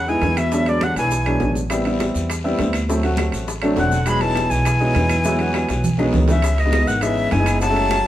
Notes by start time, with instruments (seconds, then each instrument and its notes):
Already playing: upright bass E2, flute F#5
0.07 baritone saxophone E3, grand piano E3 G#3 B3 D#4, flute G#5, high conga, maracas
0.22 upright bass E2, high bongo, low bongo, high conga, high timbale, low timbale, maracas
0.37 baritone saxophone B2, flute E5, high bongo, high conga, high timbale, claves, maracas
0.52 grand piano F#3 G#3 B3 D4, high bongo, high conga, maracas
0.66 baritone saxophone B2, grand piano F#3 G#3 B3 D4, flute D5, high conga, high timbale, maracas
0.81 baritone saxophone D3, flute F#5, high bongo, high conga, high timbale, low timbale, claves, maracas
0.96 upright bass B1, baritone saxophone E3, flute G#5, high bongo, high conga, high timbale, maracas
1.11 high bongo, high conga, maracas
1.25 grand piano F#3 G#3 B3 D4, high conga, high timbale, claves, maracas
1.40 upright bass A1, high bongo, low bongo, high conga, low timbale, maracas
1.55 high bongo, high conga, maracas
1.70 grand piano G3 B3 C4 E4, high bongo, high conga, high timbale, long guiro, claves, maracas
1.85 grand piano G3 B3 C4 E4, high bongo, high conga, high timbale, maracas
2.00 high bongo, high conga, high timbale, low timbale, short guiro, maracas
2.14 upright bass E2, high bongo, high conga, short guiro, maracas
2.29 high bongo, high conga, high timbale, long guiro, claves, maracas
2.44 grand piano G3 B3 C4 E4, high conga, maracas
2.59 upright bass D2, high bongo, low bongo, high conga, high timbale, low timbale, short guiro, maracas
2.73 high bongo, high timbale, short guiro, claves, maracas
2.88 grand piano F#3 A3 C4 E4, high bongo, high conga, long guiro, maracas
3.03 grand piano F#3 A3 C4 F#4, high bongo, high conga, high timbale, maracas
3.17 high bongo, high conga, high timbale, low timbale, short guiro, claves, maracas
3.32 upright bass A1, high bongo, high conga, high timbale, short guiro, maracas
3.47 high bongo, high conga, long guiro, maracas
3.62 grand piano F#3 A3 C4 D4, high conga, high timbale, claves, maracas
3.76 upright bass E1, baritone saxophone D3, flute F#5, high bongo, low bongo, high conga, low timbale, short guiro, maracas
3.91 high bongo, high conga, short guiro, maracas
4.06 grand piano F#3 G#3 B3 D#4, baritone saxophone G#3, flute B5, high bongo, high conga, high timbale, long guiro, claves, maracas
4.21 baritone saxophone E3, grand piano F#3 G#3 B3 D#4, flute A5, high bongo, high timbale, maracas
4.35 high bongo, high conga, high timbale, low timbale, short guiro, maracas
4.50 upright bass B1, baritone saxophone E3, flute G#5, high bongo, high conga, short guiro, maracas
4.65 high bongo, high conga, high timbale, long guiro, claves, maracas
4.80 grand piano F#3 G#3 B3 D#4, high conga, maracas
4.95 upright bass E2, high bongo, low bongo, high conga, high timbale, low timbale, short guiro, maracas
5.10 high bongo, high conga, high timbale, short guiro, claves, maracas
5.24 grand piano F#3 G#3 B3 E4, high bongo, high conga, long guiro, maracas
5.39 grand piano F#3 G#3 B3 F#4, high bongo, high timbale, maracas
5.54 high bongo, high timbale, low timbale, short guiro, claves, maracas
5.69 upright bass B1, high bongo, high timbale, short guiro, maracas
5.84 low conga, long guiro, maracas
5.98 grand piano F#3 G#3 B3 D#4, low bongo, high timbale, claves, maracas
6.13 upright bass C#2, low bongo, low conga, low timbale, short guiro, maracas
6.28 baritone saxophone C#3, flute E5, low bongo, low conga, low timbale, short guiro, maracas
6.42 high bongo, high conga, high timbale, long guiro, claves, maracas
6.58 baritone saxophone B2, flute D#5, high bongo, high conga, high timbale, maracas
6.65 grand piano E3 G#3 B3 D#4
6.73 high bongo, high conga, high timbale, low timbale, short guiro, maracas
6.87 upright bass G#1, baritone saxophone D#3, flute F#5, high bongo, high conga, short guiro, maracas
7.01 baritone saxophone C#3, grand piano E3 G#3 B3 D#4, flute E5, high bongo, high timbale, long guiro, claves, maracas
7.17 high conga, maracas
7.31 upright bass F#1, baritone saxophone E3, flute G#5, high bongo, low bongo, high conga, high timbale, low timbale, short guiro, maracas
7.39 grand piano E3 G#3 B3 D#4
7.46 high bongo, high timbale, short guiro, claves, maracas
7.61 baritone saxophone F#3, flute A5, high bongo, high conga, long guiro, maracas
7.69 grand piano G#3 A3 C#4 E4
7.76 high conga, high timbale, maracas
7.91 high bongo, high conga, high timbale, low timbale, short guiro, claves, maracas